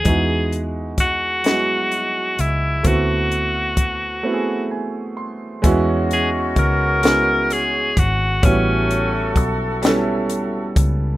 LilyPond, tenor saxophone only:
\new Staff \with { instrumentName = "Tenor saxophone" } { \time 6/8 \key e \lydian \tempo 4. = 43 gis'8 r8 fis'4. e'8 | fis'2 r4 | r8 gis'8 ais'4 gis'8 fis'8 | cis'4 r2 | }